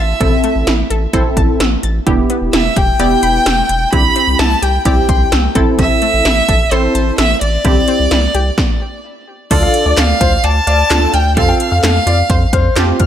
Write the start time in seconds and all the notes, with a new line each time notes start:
Already playing: A1 E5
0.21 A1 C3 C4 E4 A4, kick, closed hi-hat
0.44 A3, closed hi-hat
0.56 A1
0.67 A1 E4, snare, closed hi-hat
0.90 A1 A4, closed hi-hat
1.13 A1 C4 E4 A4 C5, kick, closed hi-hat
1.37 A1 A5, kick, closed hi-hat
1.60 A1 E6, snare, closed hi-hat
1.83 A1 A6, closed hi-hat
2.07 E1 D3 B3 E4 G4, kick, closed hi-hat
2.30 B3, closed hi-hat
2.42 E1
2.53 E1 E4 E5, snare, closed hi-hat
2.76 E1 G4 G5, kick, closed hi-hat
2.99 E1 B3 E4 G4 D5, closed hi-hat
3.23 E1 B5, closed hi-hat
3.46 E1 E6, snare, closed hi-hat
3.69 E1 G6, closed hi-hat
3.92 C2 D3 C4 E4 G4 B5, kick, closed hi-hat
4.16 C4, closed hi-hat
4.27 C2
4.39 C2 E4 A5, snare, closed hi-hat
4.62 C2 G4 G5, closed hi-hat
4.85 C2 C4 E4 G4 D5 G5, kick, closed hi-hat
5.09 C2 C6, kick, closed hi-hat
5.32 C2 E6, snare, closed hi-hat
5.55 A1 C4 E4 A4 A6, kick, closed hi-hat
5.79 C3 E5, kick, closed hi-hat
6.02 A3, closed hi-hat
6.14 A1
6.25 A1 E4, snare, closed hi-hat
6.49 A1 A4, kick, closed hi-hat
6.71 A1 C4 E4 A4 C5, closed hi-hat
6.95 A1 A5, closed hi-hat
7.18 A1 E5 E6, snare, closed hi-hat
7.41 A1 D5 A6, closed hi-hat
7.65 C2 D3 C4 E4 G4, kick, closed hi-hat
7.88 C4, closed hi-hat
8.00 C2
8.11 C2 E4, snare, closed hi-hat
8.35 C2 G4, closed hi-hat
8.58 kick, snare
9.51 D2 D3 D4 F4 A4 D5, kick, closed hi-hat, crash
9.63 F5
9.74 closed hi-hat
9.86 D2 D5
9.97 D2 A3 F5, snare, clap, closed hi-hat
10.21 D2 F4 C5, kick, closed hi-hat
10.44 D2 D5 A5, closed hi-hat
10.67 D2 D5 F5, closed hi-hat
10.90 D2 D4 F4 A4 A5, snare, clap, closed hi-hat
11.14 D2 G5 F6, closed hi-hat
11.37 F2 C3 C4 F4 A4 F5, kick, closed hi-hat
11.49 G5
11.60 F5, closed hi-hat
11.72 F2 F5
11.83 F2 A3 F5, snare, clap, closed hi-hat
12.06 F2 F4 D5, closed hi-hat
12.30 F2 C5, kick, closed hi-hat
12.53 F2 C5 F5, kick, closed hi-hat
12.76 F2 C4 F4 G4 A5, snare, clap, closed hi-hat
13.00 F2 F6, kick, closed hi-hat